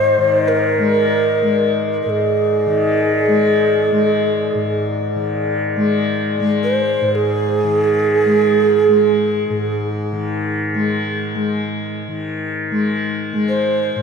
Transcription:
Already playing: tanpura G#2 D#3 G#3, native american-style wooden flute C5, glass harmonica D5 D#5
0.18 tanpura D#3
0.48 native american-style wooden flute A#4
0.78 tanpura G#3
1.42 tanpura G#3
2.03 tanpura G#2, native american-style wooden flute A#4
2.10 native american-style wooden flute G#4
2.66 tanpura D#3
3.27 tanpura G#3
3.42 glass harmonica G#4
3.91 tanpura G#3
4.55 tanpura G#2
5.16 tanpura D#3
5.76 tanpura G#3
6.40 tanpura G#3
6.64 native american-style wooden flute C5
7.01 tanpura G#2
7.15 native american-style wooden flute G#4
7.64 tanpura D#3
8.25 tanpura G#3
8.88 tanpura G#3
9.50 tanpura G#2
10.12 tanpura D#3
10.74 tanpura G#3
11.35 tanpura G#3
12.08 tanpura D#3
12.71 tanpura G#3
13.33 tanpura G#3
13.49 native american-style wooden flute C5
13.96 tanpura G#2

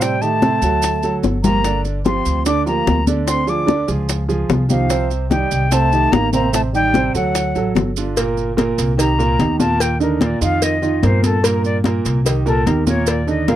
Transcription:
Already playing: upright bass A2, grand piano C3 C4 C5
0.01 trombone G3, flute G5, high bongo, high conga, maracas
0.21 grand piano D#3 D#4 G4, trombone A3, flute A5, high conga, maracas
0.42 grand piano C3 C4 C5, high bongo, high conga, maracas
0.62 upright bass D2, grand piano F#3 F#4 A4, high bongo, high conga, maracas
0.82 high bongo, high conga, maracas
1.03 grand piano F#3 F#4 A4, high bongo, high conga, maracas
1.23 upright bass G1, high bongo, high conga, maracas
1.43 grand piano F3 F4 G4, trombone A#3, flute A#5, low bongo, low conga, maracas
1.64 grand piano D3 D4 D5, high bongo, high conga, maracas
1.85 high bongo, high conga, maracas
2.05 grand piano F3 F4 G4, trombone C4, flute C6, high bongo, high conga, maracas
2.25 upright bass D2, high conga, maracas
2.46 grand piano D3 D4 D5, trombone D4, flute D6, high bongo, high conga, maracas
2.66 grand piano F3 F4 G4, trombone A#3, flute A#5, high bongo, high conga, maracas
2.87 upright bass D2, high bongo, low bongo, high conga, maracas
3.07 grand piano D3 D4 D5, high bongo, high conga, maracas
3.28 trombone C4, flute C6, high bongo, high conga, maracas
3.47 grand piano F3 F4 G#4, trombone D4, flute D6, high conga, maracas
3.66 grand piano D3 D4 D5, high bongo, high conga, maracas
3.88 upright bass C#2, grand piano F3 F4 G#4, high bongo, high conga, maracas
4.09 high bongo, high conga, maracas
4.29 grand piano F3 F4 G#4, high bongo, high conga, maracas
4.49 upright bass C2, high bongo, low bongo, high conga, maracas
4.69 grand piano D#3 D#4 G4, trombone F3, flute F5, high bongo, high conga, maracas
4.90 grand piano C3 C4 C5, high bongo, high conga, maracas
5.11 high bongo, high conga, maracas
5.30 grand piano D#3 D#4 G4, trombone G3, flute G5, high bongo, high conga, maracas
5.51 upright bass C2, high conga, maracas
5.71 grand piano C3 C4 C5, trombone A3, flute A5, high bongo, high conga, maracas
5.92 grand piano D#3 D#4 G4, high bongo, high conga, maracas
6.12 upright bass A1, trombone A#3, flute A#5, high bongo, low bongo, high conga, maracas
6.32 grand piano C3 C4 C5, trombone A#3, flute A#5, high bongo, high conga, maracas
6.53 trombone A3, flute A5, high bongo, high conga, maracas
6.73 grand piano D#3 D#4 G4, trombone G3, flute G5, high conga, maracas
6.94 grand piano C3 C4 C5, high bongo, high conga, maracas
7.14 upright bass D2, grand piano F#3 F#4 A4, trombone F#3, flute F#5, high bongo, high conga, maracas
7.35 high bongo, high conga, maracas
7.55 upright bass A1, grand piano F#3 F#4 A4, high bongo, high conga, maracas
7.75 upright bass G1, high bongo, low bongo, high conga, maracas
7.97 grand piano D3 D4 F4, high bongo, maracas
8.17 grand piano A#2 A#3 A#4, cowbell, high conga, maracas
8.37 high conga, maracas
8.57 grand piano A#2 A#3 A#4, cowbell, high conga, maracas
8.78 upright bass C2, cowbell, high conga, maracas
8.97 grand piano D#3 D#4 G4, flute A#5, cowbell, high conga, maracas
9.19 grand piano A#2 A#3 A#4, high conga, maracas
9.39 upright bass D#2, grand piano D#3 D#4 G4, cowbell, high conga, maracas
9.60 grand piano A#2 A#3 A#4, flute A5, high conga, maracas
9.80 flute G5, cowbell, high conga, maracas
10.00 grand piano D3 D4 D#4, flute A#4, high conga, maracas
10.21 grand piano A#2 A#3 A#4, flute D5, cowbell, high conga, maracas
10.41 upright bass F2, grand piano D#3 D#4 F4, flute F5, high conga, maracas
10.62 flute D#5, cowbell, high conga, maracas
10.82 grand piano D#3 D#4 F4, high conga, maracas
11.03 upright bass G2, grand piano A#2 A#3 A#4, flute C5, cowbell, high conga, maracas
11.23 flute A4, cowbell, high conga, maracas
11.43 grand piano A#2 A#3 A#4, flute A#4, cowbell, high conga, maracas
11.64 flute D5, high conga, maracas
11.84 grand piano A#2 A#3 A#4, cowbell, high conga, maracas
12.05 upright bass C2, cowbell, high conga, maracas
12.25 grand piano D#3 D#4 G4, cowbell, high conga, maracas
12.46 grand piano A#2 A#3 A#4, flute A4, high conga, maracas
12.66 upright bass D#2, grand piano D#3 D#4 G4, flute A#4, cowbell, high conga, maracas
12.87 grand piano A#2 A#3 A#4, flute C#5, high conga, maracas
13.07 flute D5, cowbell, high conga, maracas
13.27 grand piano D3 D4 D#4, flute D#5, high conga, maracas
13.48 grand piano A#2 A#3 A#4, flute F5, cowbell, high conga, maracas

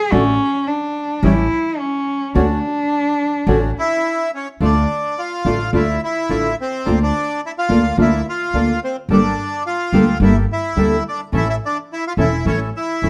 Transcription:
Already playing: cello G#4
0.11 upright bass A1, nylon-string guitar D3 A3 D4 F#4, bandoneon A3 D4 F#4, cello C#4
0.67 cello D4
1.23 upright bass A1, nylon-string guitar E3 G3 C#4 E4, bandoneon A3 C#4 G4, cello E4
1.79 cello C#4
2.34 upright bass D2, nylon-string guitar D3 A3 C#4 F#4, bandoneon C#4 D4 F#4, cello D4
3.47 upright bass A1, nylon-string guitar D3 A3 C#4 F#4, bandoneon C#4 D4 F#4
3.78 bandoneon E4 E5
4.34 bandoneon C#4 C#5
4.60 upright bass D2, nylon-string guitar D3 A3 D4 F4, bandoneon A3 D4 F4
4.65 bandoneon D5
5.18 bandoneon F4 F5
5.45 upright bass A1, nylon-string guitar D3 A3 D4 F4, bandoneon A3 D4 F4
5.72 upright bass D2, nylon-string guitar D3 A3 D4 F4, bandoneon A3 D4 E4 F4
5.77 bandoneon E5
6.03 bandoneon E4 E5
6.29 upright bass A1, nylon-string guitar D3 A3 D4 F4, bandoneon A3 D4 F4
6.61 bandoneon C4 C5
6.85 upright bass D2, nylon-string guitar D3 A#3 D4 F4, bandoneon A#3 D4 F4
7.02 bandoneon D4 D5
7.46 bandoneon E4 E5
7.58 bandoneon F4 F5
7.69 upright bass D2, nylon-string guitar D3 A#3 D4 F4, bandoneon A#3 D4 F4
7.97 upright bass D2, nylon-string guitar D3 A#3 D4 F4, bandoneon A#3 D4 E4 F4
8.02 bandoneon E5
8.29 bandoneon F4 F5
8.53 upright bass D2, nylon-string guitar D3 A#3 D4 F4, bandoneon A#3 D4 F4
8.84 bandoneon C4 C5
9.09 upright bass G1, nylon-string guitar D3 G3 A#3 D4 A4, bandoneon A#3 D4 G4 A4
9.13 bandoneon D5
9.66 bandoneon F4 F5
9.93 upright bass D2, nylon-string guitar D3 G3 A#3 D4 A4, bandoneon A#3 G4 A4
10.20 upright bass G1, nylon-string guitar D3 G3 A#3 D4 A4, bandoneon A#3 E4 G4 A4
10.25 bandoneon E5
10.53 bandoneon E4 E5
10.76 upright bass D2, nylon-string guitar D3 G3 A#3 D4 A4, bandoneon A#3 G4 A4
11.09 bandoneon D4 D5
11.32 upright bass A1, nylon-string guitar E3 A3 C#4 E4, bandoneon C#4 E4 A4
11.37 bandoneon E4 E5
11.49 bandoneon E4 E5
11.66 bandoneon D4 D5
11.93 bandoneon E4 E5
12.07 bandoneon F4 F5
12.17 upright bass E1, nylon-string guitar E3 A3 C#4 E4, bandoneon C#4 E4 A4 E5
12.45 upright bass A1, nylon-string guitar E3 A3 C#4 E4, bandoneon C#4 E4 A4 C#5
12.77 bandoneon E4 E5
13.02 upright bass E1, nylon-string guitar E3 A3 C#4 E4, bandoneon C#4 E4 A4

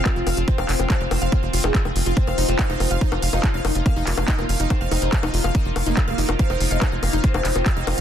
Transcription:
Already playing: synth drone F3 C4
0.06 synth arpeggio sound F4, kick, clap, closed hi-hat, high bongo
0.16 analog synth bass F1, synth arpeggio sound F4
0.27 analog synth bass F1, synth arpeggio sound F5, open hi-hat, high bongo
0.37 analog synth bass F1, synth arpeggio sound F4, closed hi-hat
0.48 oud C4, synth arpeggio sound F4, kick, closed hi-hat
0.58 analog synth bass F1, synth arpeggio sound F5, high bongo
0.69 analog synth bass F1, synth arpeggio sound F4, clap, open hi-hat
0.79 analog synth bass F1, oud C4, synth arpeggio sound F4, closed hi-hat, high bongo
0.90 synth arpeggio sound F5, kick, clap, closed hi-hat
1.01 analog synth bass F1, oud C4, synth arpeggio sound F4
1.11 analog synth bass F1, synth arpeggio sound F4, open hi-hat, high bongo
1.22 analog synth bass F1, synth arpeggio sound F5, closed hi-hat
1.32 oud A#3, synth arpeggio sound F4, kick, closed hi-hat, high bongo
1.43 analog synth bass F1, synth arpeggio sound F4
1.53 analog synth bass F1, synth arpeggio sound F4, open hi-hat
1.64 analog synth bass F1, oud G#3, synth arpeggio sound D#4, high bongo
1.75 synth arpeggio sound G#4, kick, clap, closed hi-hat
1.85 analog synth bass F1, synth arpeggio sound G#4, high bongo
1.96 analog synth bass F1, synth arpeggio sound F4, open hi-hat
2.06 analog synth bass F1, synth arpeggio sound F4, closed hi-hat
2.17 synth drone A#3, oud C4, synth arpeggio sound F4, kick, closed hi-hat
2.27 analog synth bass F1, synth arpeggio sound F5, high bongo
2.38 analog synth bass F1, synth arpeggio sound D#4, open hi-hat
2.48 analog synth bass F1, oud C4, synth arpeggio sound F4, closed hi-hat
2.59 synth arpeggio sound F5, kick, clap, closed hi-hat, high bongo
2.70 analog synth bass F1, oud C4, synth arpeggio sound D#4
2.80 analog synth bass F1, synth arpeggio sound F4, open hi-hat, high bongo
2.91 analog synth bass F1, synth arpeggio sound F5, closed hi-hat
3.01 oud C4, synth arpeggio sound D#4, kick, closed hi-hat
3.12 analog synth bass F1, synth arpeggio sound F4, high bongo
3.22 analog synth bass F1, synth arpeggio sound F5, open hi-hat
3.33 analog synth bass F1, synth arpeggio sound D#4, oud F4, closed hi-hat, high bongo
3.44 kick, clap, closed hi-hat
3.54 analog synth bass F1, wobble bass C4, synth arpeggio sound F5
3.65 analog synth bass F1, wobble bass C4, synth arpeggio sound D#4, open hi-hat, high bongo
3.75 analog synth bass F1, synth arpeggio sound F4, closed hi-hat
3.86 oud A#3, synth arpeggio sound F5, kick, closed hi-hat, high bongo
3.96 analog synth bass F1, synth arpeggio sound D#4
4.07 analog synth bass F1, wobble bass A#3, synth arpeggio sound F4, clap, open hi-hat
4.17 analog synth bass F1, oud A#3, synth arpeggio sound F5, closed hi-hat, high bongo
4.28 synth arpeggio sound D#4, kick, clap, closed hi-hat
4.39 analog synth bass F1, oud A#3, synth arpeggio sound F4, high bongo
4.49 analog synth bass F1, synth arpeggio sound F5, open hi-hat
4.60 analog synth bass F1, synth arpeggio sound D#4, closed hi-hat
4.70 oud C4, synth arpeggio sound F4, kick, closed hi-hat, high bongo
4.81 analog synth bass F1, synth arpeggio sound F5
4.91 analog synth bass F1, synth arpeggio sound D#4, open hi-hat, high bongo
5.02 analog synth bass F1, oud D#4, synth arpeggio sound F4, closed hi-hat
5.13 synth arpeggio sound F5, kick, clap, closed hi-hat
5.23 analog synth bass F1, synth arpeggio sound D#4, high bongo
5.34 analog synth bass F1, synth arpeggio sound F4, open hi-hat
5.44 analog synth bass F1, synth arpeggio sound F5, closed hi-hat, high bongo
5.55 oud A#3, synth arpeggio sound D#4, kick, closed hi-hat
5.65 analog synth bass F1, synth arpeggio sound F4
5.76 analog synth bass F1, synth arpeggio sound F5, open hi-hat, high bongo
5.86 analog synth bass F1, oud A#3, synth arpeggio sound D#4, closed hi-hat
5.97 synth arpeggio sound F4, kick, clap, closed hi-hat, high bongo
6.08 analog synth bass F1, oud A#3, synth arpeggio sound F5
6.18 analog synth bass F1, synth arpeggio sound D#4, open hi-hat
6.29 analog synth bass F1, synth arpeggio sound F4, closed hi-hat, high bongo
6.39 oud C4, synth arpeggio sound F5, kick, closed hi-hat
6.50 analog synth bass F1, synth arpeggio sound D#4, high bongo
6.60 analog synth bass F1, synth arpeggio sound F4, open hi-hat
6.71 analog synth bass F1, oud D#4, synth arpeggio sound F5, closed hi-hat
6.82 synth arpeggio sound D#4, kick, clap, closed hi-hat, high bongo
6.92 analog synth bass F1, synth arpeggio sound F4
7.03 analog synth bass F1, synth arpeggio sound F5, open hi-hat, high bongo
7.13 analog synth bass F1, synth arpeggio sound D#4, closed hi-hat
7.24 oud C4, synth arpeggio sound F4, kick, closed hi-hat
7.34 analog synth bass F1, synth arpeggio sound F5, high bongo
7.45 analog synth bass F1, synth arpeggio sound D#4, clap, open hi-hat
7.55 analog synth bass F1, oud C4, synth arpeggio sound F4, closed hi-hat, high bongo
7.66 synth arpeggio sound F5, kick, clap, closed hi-hat
7.77 analog synth bass F1, oud C4, synth arpeggio sound D#4
7.87 analog synth bass F1, synth arpeggio sound F4, open hi-hat, high bongo
7.98 analog synth bass F1, synth arpeggio sound F5, closed hi-hat

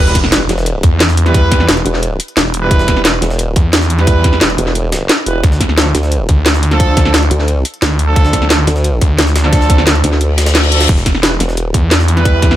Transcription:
Already playing: brass ensemble G3 E4 B4
0.00 detuned saw bass E1, sub drop
0.07 snare
0.15 kick, snare, closed hi-hat
0.24 snare
0.32 brass ensemble G3 E4 B4, snare, closed hi-hat
0.49 wobble bass E1, snare, closed hi-hat
0.58 snare
0.66 closed hi-hat
0.83 detuned saw bass E2, kick, closed hi-hat
1.00 snare, closed hi-hat
1.09 snare
1.17 closed hi-hat
1.26 brass ensemble G3 E4 B4, snare, closed hi-hat
1.34 kick, closed hi-hat
1.51 kick, snare, closed hi-hat
1.60 snare
1.68 detuned saw bass E1, brass ensemble G3 E4 B4, snare, closed hi-hat
1.77 closed hi-hat
1.86 wobble bass E1, closed hi-hat
1.94 snare
2.03 closed hi-hat
2.20 closed hi-hat
2.28 closed hi-hat
2.37 detuned saw bass E1, snare, closed hi-hat
2.54 closed hi-hat
2.62 brass ensemble G3 E4 B4
2.71 detuned saw bass E1, kick, closed hi-hat
2.79 snare
2.88 kick, snare, closed hi-hat
2.96 snare
3.05 brass ensemble G3 E4 B4, snare, closed hi-hat
3.22 wobble bass E1, snare, closed hi-hat
3.30 snare
3.39 closed hi-hat
3.56 detuned saw bass E2, kick, closed hi-hat
3.73 snare, closed hi-hat
3.81 snare
3.90 closed hi-hat
3.98 brass ensemble G3 E4 B4, snare, closed hi-hat
4.07 kick, closed hi-hat
4.24 kick, snare, closed hi-hat
4.33 snare
4.41 detuned saw bass E1, brass ensemble G3 E4 B4, snare, closed hi-hat
4.50 closed hi-hat
4.58 wobble bass E1, closed hi-hat
4.67 snare
4.75 closed hi-hat
4.92 snare, closed hi-hat
5.09 snare, closed hi-hat
5.26 wobble bass E1, brass ensemble G3 E4 B4, closed hi-hat
5.43 detuned saw bass D2, kick, closed hi-hat
5.52 snare
5.61 kick, snare, closed hi-hat
5.69 snare
5.78 brass ensemble F3 D4 A4, snare, closed hi-hat
5.95 wobble bass D2, snare, closed hi-hat
6.03 snare
6.12 closed hi-hat
6.29 detuned saw bass D2, kick, closed hi-hat
6.46 snare, closed hi-hat
6.54 snare
6.63 closed hi-hat
6.71 brass ensemble F3 D4 A4, snare, closed hi-hat
6.80 kick, closed hi-hat
6.97 kick, snare, closed hi-hat
7.05 snare
7.14 detuned saw bass D2, brass ensemble F3 D4 A4, snare, closed hi-hat
7.23 closed hi-hat
7.31 wobble bass D2, closed hi-hat
7.40 snare
7.48 closed hi-hat
7.65 closed hi-hat
7.74 closed hi-hat
7.82 detuned saw bass D2, snare, closed hi-hat
7.99 closed hi-hat
8.08 brass ensemble F3 D4 A4
8.16 detuned saw bass D2, kick, closed hi-hat
8.25 snare
8.33 kick, snare, closed hi-hat
8.42 snare
8.50 brass ensemble F3 D4 A4, snare, closed hi-hat
8.67 wobble bass D2, snare, closed hi-hat
8.76 snare
8.84 closed hi-hat
9.01 detuned saw bass D2, kick, closed hi-hat
9.19 snare, closed hi-hat
9.27 snare
9.36 snare, closed hi-hat
9.44 brass ensemble F3 D4 A4, snare
9.53 kick, snare, closed hi-hat
9.61 snare
9.70 kick, snare, closed hi-hat
9.78 snare
9.87 detuned saw bass D2, brass ensemble F3 D4 A4, snare, closed hi-hat
9.95 closed hi-hat
10.04 wobble bass D2, snare, closed hi-hat
10.12 snare
10.21 closed hi-hat, reverse cymbal
10.38 snare, closed hi-hat
10.46 snare, closed hi-hat
10.55 snare, closed hi-hat
10.64 snare
10.72 brass ensemble F3 D4 A4, closed hi-hat
10.81 snare, closed hi-hat
10.89 detuned saw bass E1, kick, closed hi-hat, crash
10.98 snare
11.06 kick, snare, closed hi-hat
11.15 snare
11.23 brass ensemble G3 E4 B4, snare, closed hi-hat
11.40 wobble bass E1, snare, closed hi-hat
11.49 snare
11.57 closed hi-hat
11.74 detuned saw bass E2, kick, closed hi-hat
11.91 snare, closed hi-hat
12.00 snare
12.08 closed hi-hat
12.17 brass ensemble G3 E4 B4, snare, closed hi-hat
12.25 kick, closed hi-hat
12.42 kick, snare, closed hi-hat
12.51 snare

